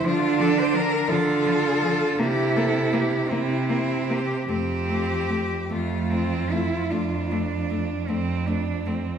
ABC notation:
X:1
M:12/8
L:1/16
Q:3/8=52
K:F
V:1 name="Cello"
F2 A c B2 A6 G2 A2 G2 E2 E2 G2 | G6 F12 z6 |]
V:2 name="Cello"
D6 F6 E6 C6 | C6 A,2 C2 E2 D6 C2 D2 C2 |]
V:3 name="Cello"
F,2 F,2 F,2 F,2 F,2 F,2 B,2 B,2 B,2 B,2 B,2 B,2 | A,2 A,2 A,2 A,2 A,2 A,2 A,2 A,2 A,2 A,2 A,2 A,2 |]
V:4 name="Cello" clef=bass
D,6 D,6 C,6 C,6 | F,,6 F,,6 F,,6 F,,6 |]